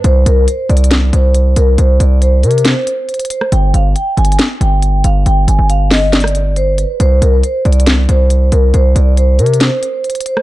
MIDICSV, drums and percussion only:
0, 0, Header, 1, 2, 480
1, 0, Start_track
1, 0, Tempo, 434783
1, 47, Time_signature, 4, 2, 24, 8
1, 11505, End_track
2, 0, Start_track
2, 0, Title_t, "Drums"
2, 47, Note_on_c, 9, 42, 71
2, 158, Note_off_c, 9, 42, 0
2, 290, Note_on_c, 9, 42, 74
2, 401, Note_off_c, 9, 42, 0
2, 528, Note_on_c, 9, 42, 74
2, 638, Note_off_c, 9, 42, 0
2, 768, Note_on_c, 9, 42, 46
2, 848, Note_off_c, 9, 42, 0
2, 848, Note_on_c, 9, 42, 62
2, 927, Note_off_c, 9, 42, 0
2, 927, Note_on_c, 9, 42, 75
2, 1003, Note_off_c, 9, 42, 0
2, 1003, Note_on_c, 9, 42, 76
2, 1008, Note_on_c, 9, 38, 102
2, 1113, Note_off_c, 9, 42, 0
2, 1118, Note_off_c, 9, 38, 0
2, 1249, Note_on_c, 9, 42, 77
2, 1359, Note_off_c, 9, 42, 0
2, 1485, Note_on_c, 9, 42, 74
2, 1595, Note_off_c, 9, 42, 0
2, 1726, Note_on_c, 9, 42, 79
2, 1837, Note_off_c, 9, 42, 0
2, 1967, Note_on_c, 9, 42, 71
2, 2078, Note_off_c, 9, 42, 0
2, 2210, Note_on_c, 9, 42, 76
2, 2321, Note_off_c, 9, 42, 0
2, 2448, Note_on_c, 9, 42, 75
2, 2559, Note_off_c, 9, 42, 0
2, 2686, Note_on_c, 9, 46, 56
2, 2688, Note_on_c, 9, 42, 66
2, 2768, Note_off_c, 9, 42, 0
2, 2768, Note_on_c, 9, 42, 64
2, 2796, Note_off_c, 9, 46, 0
2, 2848, Note_off_c, 9, 42, 0
2, 2848, Note_on_c, 9, 42, 64
2, 2923, Note_off_c, 9, 42, 0
2, 2923, Note_on_c, 9, 42, 75
2, 2928, Note_on_c, 9, 38, 103
2, 3033, Note_off_c, 9, 42, 0
2, 3038, Note_off_c, 9, 38, 0
2, 3168, Note_on_c, 9, 42, 74
2, 3279, Note_off_c, 9, 42, 0
2, 3407, Note_on_c, 9, 42, 47
2, 3467, Note_off_c, 9, 42, 0
2, 3467, Note_on_c, 9, 42, 56
2, 3527, Note_off_c, 9, 42, 0
2, 3527, Note_on_c, 9, 42, 70
2, 3587, Note_off_c, 9, 42, 0
2, 3587, Note_on_c, 9, 42, 81
2, 3646, Note_off_c, 9, 42, 0
2, 3646, Note_on_c, 9, 42, 85
2, 3756, Note_off_c, 9, 42, 0
2, 3767, Note_on_c, 9, 37, 65
2, 3878, Note_off_c, 9, 37, 0
2, 3887, Note_on_c, 9, 42, 70
2, 3998, Note_off_c, 9, 42, 0
2, 4130, Note_on_c, 9, 42, 73
2, 4241, Note_off_c, 9, 42, 0
2, 4369, Note_on_c, 9, 42, 74
2, 4479, Note_off_c, 9, 42, 0
2, 4609, Note_on_c, 9, 42, 47
2, 4689, Note_off_c, 9, 42, 0
2, 4689, Note_on_c, 9, 42, 64
2, 4768, Note_off_c, 9, 42, 0
2, 4768, Note_on_c, 9, 42, 74
2, 4844, Note_off_c, 9, 42, 0
2, 4844, Note_on_c, 9, 42, 75
2, 4849, Note_on_c, 9, 38, 103
2, 4954, Note_off_c, 9, 42, 0
2, 4960, Note_off_c, 9, 38, 0
2, 5090, Note_on_c, 9, 42, 75
2, 5200, Note_off_c, 9, 42, 0
2, 5327, Note_on_c, 9, 42, 76
2, 5437, Note_off_c, 9, 42, 0
2, 5566, Note_on_c, 9, 42, 80
2, 5677, Note_off_c, 9, 42, 0
2, 5807, Note_on_c, 9, 42, 71
2, 5918, Note_off_c, 9, 42, 0
2, 6050, Note_on_c, 9, 42, 76
2, 6161, Note_off_c, 9, 42, 0
2, 6289, Note_on_c, 9, 42, 74
2, 6399, Note_off_c, 9, 42, 0
2, 6525, Note_on_c, 9, 46, 58
2, 6527, Note_on_c, 9, 38, 99
2, 6636, Note_off_c, 9, 46, 0
2, 6637, Note_off_c, 9, 38, 0
2, 6768, Note_on_c, 9, 38, 102
2, 6768, Note_on_c, 9, 42, 65
2, 6848, Note_off_c, 9, 42, 0
2, 6848, Note_on_c, 9, 42, 65
2, 6878, Note_off_c, 9, 38, 0
2, 6888, Note_on_c, 9, 37, 90
2, 6928, Note_off_c, 9, 42, 0
2, 6928, Note_on_c, 9, 42, 67
2, 6999, Note_off_c, 9, 37, 0
2, 7010, Note_off_c, 9, 42, 0
2, 7010, Note_on_c, 9, 42, 73
2, 7120, Note_off_c, 9, 42, 0
2, 7246, Note_on_c, 9, 42, 74
2, 7357, Note_off_c, 9, 42, 0
2, 7487, Note_on_c, 9, 42, 85
2, 7597, Note_off_c, 9, 42, 0
2, 7728, Note_on_c, 9, 42, 73
2, 7838, Note_off_c, 9, 42, 0
2, 7971, Note_on_c, 9, 42, 73
2, 8081, Note_off_c, 9, 42, 0
2, 8208, Note_on_c, 9, 42, 76
2, 8319, Note_off_c, 9, 42, 0
2, 8448, Note_on_c, 9, 42, 46
2, 8528, Note_off_c, 9, 42, 0
2, 8528, Note_on_c, 9, 42, 62
2, 8608, Note_off_c, 9, 42, 0
2, 8608, Note_on_c, 9, 42, 75
2, 8683, Note_off_c, 9, 42, 0
2, 8683, Note_on_c, 9, 42, 75
2, 8689, Note_on_c, 9, 38, 104
2, 8794, Note_off_c, 9, 42, 0
2, 8799, Note_off_c, 9, 38, 0
2, 8929, Note_on_c, 9, 42, 76
2, 9040, Note_off_c, 9, 42, 0
2, 9166, Note_on_c, 9, 42, 75
2, 9276, Note_off_c, 9, 42, 0
2, 9406, Note_on_c, 9, 42, 75
2, 9516, Note_off_c, 9, 42, 0
2, 9647, Note_on_c, 9, 42, 69
2, 9758, Note_off_c, 9, 42, 0
2, 9890, Note_on_c, 9, 42, 73
2, 10000, Note_off_c, 9, 42, 0
2, 10128, Note_on_c, 9, 42, 76
2, 10238, Note_off_c, 9, 42, 0
2, 10365, Note_on_c, 9, 46, 57
2, 10367, Note_on_c, 9, 42, 63
2, 10447, Note_off_c, 9, 42, 0
2, 10447, Note_on_c, 9, 42, 64
2, 10476, Note_off_c, 9, 46, 0
2, 10527, Note_off_c, 9, 42, 0
2, 10527, Note_on_c, 9, 42, 64
2, 10602, Note_off_c, 9, 42, 0
2, 10602, Note_on_c, 9, 42, 76
2, 10608, Note_on_c, 9, 38, 100
2, 10713, Note_off_c, 9, 42, 0
2, 10718, Note_off_c, 9, 38, 0
2, 10848, Note_on_c, 9, 42, 71
2, 10959, Note_off_c, 9, 42, 0
2, 11087, Note_on_c, 9, 42, 46
2, 11147, Note_off_c, 9, 42, 0
2, 11147, Note_on_c, 9, 42, 58
2, 11206, Note_off_c, 9, 42, 0
2, 11206, Note_on_c, 9, 42, 68
2, 11267, Note_off_c, 9, 42, 0
2, 11267, Note_on_c, 9, 42, 78
2, 11326, Note_off_c, 9, 42, 0
2, 11326, Note_on_c, 9, 42, 85
2, 11436, Note_off_c, 9, 42, 0
2, 11446, Note_on_c, 9, 37, 68
2, 11505, Note_off_c, 9, 37, 0
2, 11505, End_track
0, 0, End_of_file